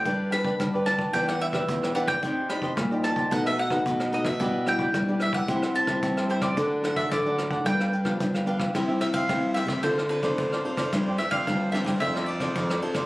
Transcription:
<<
  \new Staff \with { instrumentName = "Mandolin" } { \time 4/4 \key g \major \tempo 4 = 110 g''8 b''4 a''8 g''16 fis''16 e''4 fis''16 g''16~ | g''8 b''4 a''8 fis''16 e''16 fis''4 dis''16 e''16~ | e''8 g''4 e''16 fis''8. a''4 c''16 d''16~ | d''8 fis''16 e''16 d''4 g''4. r8 |
\key c \major r8 e''16 f''8. e''8 c''8 b'4 r8 | r8 e''16 f''8. e''8 e''8 d''4 r8 | }
  \new Staff \with { instrumentName = "Cavaquinho" } { \time 4/4 \key g \major <d' g' b' d''>8 <d' g' b' d''>16 <d' g' b' d''>16 r16 <g' b' d''>8 <g' b' d''>16 <e' g' b' d''>16 <g' b' d''>16 <e' g' b' d''>16 <e' g' b' d''>16 r16 <g' b' d''>16 <e' g' b' d''>16 <g' b' d''>16 | <d' g' c'' ees''>8 <d' g' c'' ees''>16 <d' g' c'' ees''>16 r16 <g' c'' ees''>8 <g' c'' ees''>16 <dis' a' b' dis''>16 <a' b' dis''>16 <dis' a' b' dis''>16 <dis' a' b' dis''>16 r16 <a' b' dis''>16 <dis' a' b' dis''>16 <a' b' dis''>16 | <e' g' b' d''>8 <e' g' b' d''>16 <e' g' b' d''>16 r16 <g' b' d''>8 <g' b' d''>16 <e' g' c'' e''>16 <g' c'' e''>16 <e' g' c'' e''>16 <e' g' c'' e''>16 r16 <g' c'' e''>16 <e' g' c'' e''>16 <g' c'' e''>16 | <d' a' d'' fis''>8 <d' a' d'' fis''>16 <d' a' d'' fis''>16 r16 <a' d'' fis''>8 <a' d'' fis''>16 <d' g' b' f''>16 <g' b' f''>16 <d' g' b' f''>16 <d' g' b' f''>16 r16 <g' b' f''>16 <d' g' b' f''>16 <g' b' f''>16 |
\key c \major <e' g' c'' e''>16 <g' c'' e''>16 r16 <g' c'' e''>16 <e' g' c'' e''>8 <e' g' c'' e''>16 <g' c'' e''>16 <f' a' c'' d''>16 <a' c'' d''>16 r16 <a' c'' d''>8 <a' c'' d''>16 <f' a' c'' d''>16 <a' c'' d''>16 | <f' g' c'' d''>16 <g' c'' d''>16 r16 <g' c'' d''>16 <f' g' c'' d''>8 <f' g' c'' d''>16 <g' c'' d''>16 <f' a' c'' d''>16 <a' c'' d''>16 r16 <a' c'' d''>8 <a' c'' d''>16 <f' a' c'' d''>16 <a' c'' d''>16 | }
  \new Staff \with { instrumentName = "Nylon-string guitar" } { \time 4/4 \key g \major << { <d' g' b'>8 <d' g' b'>8. <d' g' b'>8. <d' g' b'>8 r16 <d' g' b'>8. <d' g' b'>8 | <ees' g' d''>16 r16 <ees' g' d''>8 r16 <ees' g' d''>8. <a dis' fis'>8 r16 <a dis' fis'>8. <a dis' fis'>16 r16 | <g d' e'>16 r16 <g d' e'>8. <g d' e'>8. <g c' e'>8. <g c' e'>8. <g c' e'>8 | <fis a d'>8 <fis a d'>8 r16 <fis a d'>8. <f b d'>8 r16 <f b d'>8. <f b d'>8 |
\key c \major <g c' e'>16 <g c' e'>8. <g c' e'>8. r16 <c' f' a'>16 r16 <c' f' a'>16 <c' f' a'>8. <c' f' a'>16 r16 | <f c' d'>8. <f c' d'>8. <f c' d'>16 r16 <c' d' a'>8 r16 <c' d' a'>8. <c' d' a'>16 r16 | } \\ { g4 d4 e4 b,4 | c'4 g4 b,4 fis4 | b,4 b,4 c4 g,4 | d4 a,4 g,4 d4 |
c4 g,4 d4 a,4 | g,4 d4 f4 f4 | } >> }
  \new Staff \with { instrumentName = "Nylon-string guitar" } { \clef bass \time 4/4 \key g \major g,4 g,4 e,4 e,4 | c4 bes,4 b,4 b,4 | b,4 g4 c4 c4 | d4 d4 g,4 g,4 |
\key c \major c8 r8 c8. c16 d4 d8 r8 | g,8 r8 g,8. g,16 f,4 f,8 r8 | }
  \new DrumStaff \with { instrumentName = "Drums" } \drummode { \time 4/4 <hh bd>8 <hh ss>16 bd16 <hh bd ss>16 hh16 <hh ss>16 bd16 <hh bd>16 <hh ss>16 hh16 <bd ss>16 <hh bd>16 <hh ss>16 hh16 <bd ss>16 | <hh bd>8 <hh ss>16 bd16 <hh bd ss>16 hh16 <hh ss>16 <hh bd>16 <hh bd>16 <hh ss>16 hh16 <bd ss>16 <hh bd>16 <hh ss>16 hh16 <bd ss>16 | <hh bd>8 <hh ss>16 bd16 <hh bd ss>16 hh16 <hh ss>16 bd16 <hh bd>16 <hh ss>16 hh16 <bd ss>16 <hh bd>16 <hh ss>16 hh16 <bd ss>16 | <hh bd>8 <hh ss>16 bd16 <hh bd ss>16 hh16 <hh ss>16 <hh bd>16 <hh bd>16 <hh ss>16 hh16 <bd ss>16 <hh bd>16 <hh ss>16 hh16 <bd ss>16 |
<bd cymr ss>8 <cymr ss>16 <bd cymr>16 <bd cymr ss>8 <cymr ss>16 <bd cymr ss>16 <bd cymr>16 ss16 cymr16 <bd cymr ss>16 <bd cymr>16 ss16 cymr16 <bd cymr ss>16 | <bd cymr ss>8 <cymr ss>16 <bd cymr>16 <bd cymr ss>8 <cymr ss>16 <bd cymr ss>16 <bd cymr>16 ss16 cymr16 <bd cymr ss>16 <bd cymr>16 ss16 cymr16 <bd cymr ss>16 | }
>>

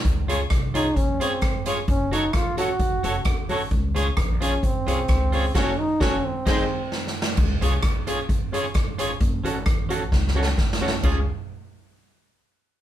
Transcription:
<<
  \new Staff \with { instrumentName = "Clean electric guitar" } { \time 4/4 \key des \major \tempo 4 = 131 r8 <f' aes' des''>16 r8. <f' aes' des''>16 r8. <f' aes' des''>16 r8. <f' aes' des''>16 r16 | r8 <ges' a' des''>16 r8. <ges' a' des''>16 r8. <ges' a' des''>16 r8. <ges' a' des''>16 r16 | r8 <f' aes' des''>16 r8. <f' aes' des''>16 r8. <f' aes' des''>16 r8. <f' aes' des''>16 r16 | <ges' a' des''>8 r8 <ges' a' des''>8 r8 <ees' aes' c''>8 r4. |
r8 <f' aes' des''>16 r8. <f' aes' des''>16 r8. <f' aes' des''>16 r8. <f' aes' des''>16 r16 | r8 <des' ges' a'>16 r8. <des' ges' a'>16 r8. <des' ges' a'>16 r8. <des' ges' a'>16 r16 | <des' f' aes'>8 r2. r8 | }
  \new Staff \with { instrumentName = "Upright piano" } { \time 4/4 \key des \major r8 <des' f' aes' des''>16 r8. <des' f' aes' des''>16 r8. <des' f' aes' des''>16 r8. <des' f' aes' des''>16 r16 | r8 <des' ges' a' des''>16 r8. <des' ges' a' des''>16 r8. <des' ges' a' des''>16 r8. <des' ges' a' des''>16 r16 | r8 <des' f' aes' des''>16 r8. <des' f' aes' des''>16 r8. <des' f' aes' des''>16 r8. <des' f' aes' des''>16 r16 | <des' ges' a' des''>8 r8 <des' ges' a' des''>8 r8 <c' ees' aes' c''>8 r4. |
r8 <des' f' aes' des''>16 r8. <des' f' aes' des''>16 r8. <des' f' aes' des''>16 r8. <des' f' aes' des''>16 r16 | r8 <des' ges' a' des''>16 r8. <des' ges' a' des''>16 r8. <des' ges' a' des''>16 r8. <des' ges' a' des''>16 r16 | <des' f' aes' des''>8 r2. r8 | }
  \new Staff \with { instrumentName = "Trombone" } { \time 4/4 \key des \major r4. ees'8 des'8 c'4 r8 | des'8 ees'8 f'8 ges'2 r8 | r4. des'8 c'2 | des'8 ees'8 des'8 c'2 r8 |
r1 | r1 | r1 | }
  \new Staff \with { instrumentName = "Upright bass" } { \clef bass \time 4/4 \key des \major des,4 c,4 bes,,8 aes,,8 aes,,4 | ges,,4 a,,4 aes,,8 f,,8 ges,,8 aes,,8 | des,4 bes,,4 aes,,8 c,8 des,4 | ges,,8 r8 ges,,8 r8 aes,,8 r4. |
des,8 c,8 bes,,4 aes,,4 aes,,4 | ges,,8 aes,,8 a,,4 des,4 aes,,8 a,,8 | des,8 r2. r8 | }
  \new DrumStaff \with { instrumentName = "Drums" } \drummode { \time 4/4 <hh bd>8 hh8 <hh bd ss>8 hh8 <hh bd>8 hh8 <hh bd ss>8 hh8 | <hh bd>8 hh8 <hh bd ss>8 hh8 <hh bd>8 hh8 <hh bd ss>8 hho8 | <hh bd>8 hh8 <hh bd ss>8 hh8 <hh bd>8 hh8 <hh bd ss>8 hho8 | <cymc bd sn>4 <bd sn>4 <cymc bd sn>4 \tuplet 3/2 { sn8 sn8 sn8 } |
<cymc bd>8 hh8 <hh bd ss>8 hh8 <hh bd>8 hh8 <hh bd ss>8 hh8 | <hh bd>8 hh8 <hh bd ss>8 hh8 \tuplet 3/2 { <bd sn>8 sn8 sn8 <bd sn>8 sn8 sn8 } | <cymc bd>4 r4 r4 r4 | }
>>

